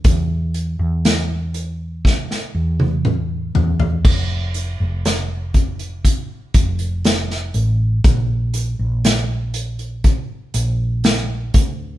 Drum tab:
CC |----------------|x---------------|----------------|
HH |x-x-x-x---------|--x-x-xxx-xxx-x-|x-x-x-xxx-x-x-x-|
SD |----o---oo------|----o-------oo--|----o-------o---|
T1 |-----------o----|----------------|----------------|
T2 |------------o---|----------------|----------------|
FT |--------------oo|----------------|----------------|
BD |o-------o-------|o-----o-o-o-----|o-------o-----o-|